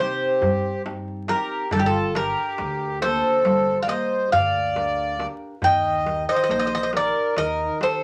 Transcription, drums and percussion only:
0.22 darbuka tek soft
0.42 darbuka dum medium
0.86 darbuka tek medium
1.08 darbuka tek soft
1.28 darbuka tek medium
1.71 darbuka dum medium
2.15 darbuka tek medium
2.58 darbuka tek medium
2.80 darbuka tek soft
3.02 darbuka tek medium
3.45 darbuka tek medium
3.88 darbuka tek medium
4.33 darbuka dum medium
4.76 darbuka tek medium
4.98 darbuka tek soft
5.20 darbuka tek medium
5.62 darbuka dum medium
5.85 darbuka tek soft
6.07 darbuka tek medium
6.28 darbuka tek soft
6.50 darbuka tek medium
6.72 darbuka tek soft
6.93 darbuka tek medium
7.15 darbuka tek soft
7.37 darbuka tek medium
7.59 darbuka tek soft
7.81 darbuka tek medium

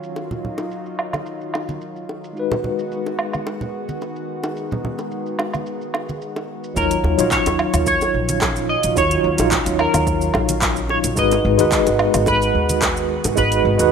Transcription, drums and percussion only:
0.03 shaker medium
0.16 high bongo soft
0.16 shaker soft
0.31 low conga medium
0.31 shaker soft
0.45 low conga medium
0.58 high bongo medium
0.58 shaker medium
0.71 shaker soft
0.86 shaker soft
0.99 low woodblock medium
1.13 high bongo soft
1.13 high conga medium
1.13 low woodblock medium
1.13 shaker medium
1.26 shaker soft
1.41 shaker soft
1.54 high bongo medium
1.54 low woodblock medium
1.68 high conga medium
1.68 shaker medium
1.81 shaker soft
1.96 shaker soft
2.09 high bongo soft
2.24 shaker medium
2.37 shaker soft
2.52 high bongo medium
2.52 low conga medium
2.52 shaker soft
2.64 low conga medium
2.79 shaker medium
2.91 shaker soft
3.06 high bongo soft
3.06 shaker soft
3.19 low woodblock medium
3.33 high conga medium
3.33 low woodblock medium
3.33 shaker medium
3.47 high bongo medium
3.47 shaker soft
3.61 low conga medium
3.61 shaker soft
3.89 high conga medium
3.89 shaker medium
4.02 high bongo soft
4.02 shaker soft
4.16 shaker soft
4.44 high bongo medium
4.44 shaker medium
4.56 shaker soft
4.71 low conga medium
4.71 shaker soft
4.85 low conga medium
4.98 high bongo soft
4.98 shaker medium
5.11 shaker soft
5.26 shaker soft
5.39 high bongo medium
5.39 low woodblock medium
5.53 high conga medium
5.53 low woodblock medium
5.53 shaker medium
5.66 shaker soft
5.81 shaker soft
5.94 high bongo medium
5.94 low woodblock medium
6.09 high conga medium
6.09 shaker medium
6.22 shaker soft
6.36 high bongo medium
6.36 shaker soft
6.64 shaker medium
6.76 kick loud
6.76 shaker medium
6.91 closed hi-hat soft
6.91 shaker soft
7.04 high bongo medium
7.19 closed hi-hat medium
7.19 shaker medium
7.31 kick loud
7.31 clap medium
7.31 shaker medium
7.46 closed hi-hat soft
7.46 high bongo medium
7.46 shaker soft
7.59 low woodblock medium
7.74 closed hi-hat medium
7.74 high conga medium
7.74 low woodblock medium
7.74 shaker medium
7.87 kick loud
7.87 shaker medium
8.01 high bongo medium
8.01 shaker soft
8.29 closed hi-hat medium
8.29 high conga medium
8.29 shaker medium
8.41 kick loud
8.41 clap loud
8.41 high bongo medium
8.41 shaker medium
8.56 shaker soft
8.83 closed hi-hat medium
8.83 shaker medium
8.97 kick loud
8.97 high bongo soft
8.97 shaker medium
9.11 closed hi-hat soft
9.11 shaker soft
9.38 closed hi-hat medium
9.38 high bongo medium
9.38 shaker medium
9.51 kick loud
9.51 clap loud
9.51 shaker medium
9.66 closed hi-hat soft
9.66 shaker soft
9.79 low woodblock medium
9.94 closed hi-hat medium
9.94 high bongo medium
9.94 high conga medium
9.94 low woodblock medium
9.94 shaker medium
10.07 kick loud
10.07 shaker medium
10.21 shaker soft
10.34 high bongo medium
10.34 low woodblock medium
10.49 closed hi-hat medium
10.49 high conga medium
10.49 shaker medium
10.62 kick loud
10.62 clap loud
10.62 shaker medium
10.76 shaker soft
10.89 high bongo soft
11.04 closed hi-hat medium
11.04 shaker medium
11.17 kick loud
11.17 shaker medium
11.31 closed hi-hat soft
11.31 high bongo medium
11.31 shaker soft
11.59 closed hi-hat medium
11.59 shaker medium
11.72 kick loud
11.72 clap loud
11.72 shaker medium
11.87 closed hi-hat soft
11.87 high bongo medium
11.87 shaker soft
11.99 low woodblock medium
12.14 closed hi-hat medium
12.14 high conga medium
12.14 low woodblock medium
12.14 shaker medium
12.26 kick loud
12.26 high bongo medium
12.26 shaker medium
12.42 shaker soft
12.69 closed hi-hat medium
12.69 high conga medium
12.69 shaker medium
12.82 kick loud
12.82 clap loud
12.82 high bongo soft
12.82 shaker medium
12.97 shaker soft
13.24 closed hi-hat medium
13.24 high bongo medium
13.24 shaker medium
13.37 kick loud
13.37 shaker medium
13.52 closed hi-hat soft
13.52 shaker soft
13.79 closed hi-hat soft
13.79 high bongo medium
13.79 shaker medium

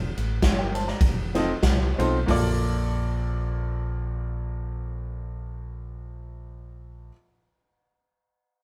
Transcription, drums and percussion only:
0.17 ride medium
0.42 kick loud
0.42 snare loud
0.42 ride medium
0.75 ride medium
0.88 snare soft
1.01 kick loud
1.01 ride medium
1.35 snare soft
1.35 ride medium
1.63 kick loud
1.63 snare loud
1.63 ride medium
2.00 ride medium
2.28 kick medium
2.28 floor tom medium
2.28 open hi-hat medium

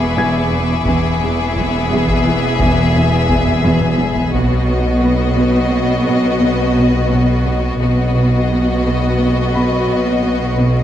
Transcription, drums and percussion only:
0.85 taiko medium
1.55 taiko medium
2.07 taiko medium
2.60 taiko medium
3.29 taiko medium
3.46 taiko low-mid medium
3.63 taiko high medium
3.81 taiko mid medium
3.98 taiko high medium
4.16 taiko low medium
4.33 taiko medium

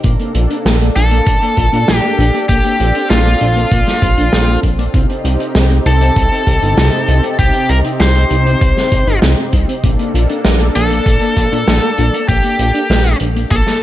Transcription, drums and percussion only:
0.04 kick loud
0.04 closed hi-hat medium
0.20 closed hi-hat soft
0.35 closed hi-hat medium
0.50 closed hi-hat medium
0.66 snare loud
0.66 closed hi-hat medium
0.81 closed hi-hat medium
0.97 closed hi-hat medium
1.11 closed hi-hat medium
1.26 kick loud
1.26 closed hi-hat medium
1.41 closed hi-hat medium
1.57 kick medium
1.57 closed hi-hat medium
1.73 closed hi-hat medium
1.88 snare loud
1.88 closed hi-hat medium
2.20 closed hi-hat medium
2.34 closed hi-hat medium
2.49 kick loud
2.49 closed hi-hat medium
2.65 closed hi-hat soft
2.80 closed hi-hat medium
2.95 closed hi-hat medium
3.10 snare loud
3.10 closed hi-hat medium
3.26 closed hi-hat medium
3.41 closed hi-hat medium
3.57 closed hi-hat medium
3.72 kick loud
3.72 closed hi-hat medium
3.87 snare soft
3.87 closed hi-hat soft
4.02 kick loud
4.02 closed hi-hat medium
4.18 closed hi-hat medium
4.33 snare loud
4.33 closed hi-hat medium
4.63 kick medium
4.63 closed hi-hat medium
4.79 closed hi-hat medium
4.94 kick loud
4.94 closed hi-hat medium
5.10 closed hi-hat soft
5.25 closed hi-hat medium
5.40 closed hi-hat medium
5.55 snare loud
5.55 closed hi-hat medium
5.71 closed hi-hat soft
5.86 closed hi-hat medium
6.01 closed hi-hat medium
6.16 kick loud
6.16 closed hi-hat medium
6.33 closed hi-hat soft
6.47 kick medium
6.47 closed hi-hat medium
6.63 closed hi-hat medium
6.78 snare loud
6.78 closed hi-hat medium
7.08 closed hi-hat medium
7.23 closed hi-hat medium
7.39 kick loud
7.39 closed hi-hat medium
7.54 closed hi-hat soft
7.69 closed hi-hat medium
7.84 closed hi-hat medium
8.00 snare loud
8.00 closed hi-hat medium
8.15 closed hi-hat medium
8.31 closed hi-hat medium
8.47 closed hi-hat medium
8.61 kick loud
8.61 closed hi-hat medium
8.77 snare soft
8.77 closed hi-hat medium
8.92 kick loud
8.92 closed hi-hat medium
9.08 closed hi-hat medium
9.22 snare loud
9.22 closed hi-hat medium
9.53 kick medium
9.53 closed hi-hat medium
9.69 closed hi-hat medium
9.84 kick loud
9.84 closed hi-hat medium
9.99 closed hi-hat soft
10.15 closed hi-hat medium
10.29 closed hi-hat medium
10.45 snare loud
10.45 closed hi-hat medium
10.60 closed hi-hat medium
10.76 closed hi-hat medium
10.90 closed hi-hat medium
11.06 kick loud
11.06 closed hi-hat medium
11.21 closed hi-hat medium
11.37 kick medium
11.37 closed hi-hat medium
11.53 closed hi-hat medium
11.68 snare loud
11.68 closed hi-hat medium
11.98 closed hi-hat medium
12.14 closed hi-hat medium
12.29 kick loud
12.29 closed hi-hat medium
12.44 closed hi-hat soft
12.59 closed hi-hat medium
12.75 closed hi-hat medium
12.90 snare loud
12.90 closed hi-hat medium
13.05 closed hi-hat medium
13.20 closed hi-hat loud
13.36 closed hi-hat medium
13.51 kick loud
13.51 closed hi-hat medium
13.67 snare soft
13.67 closed hi-hat medium

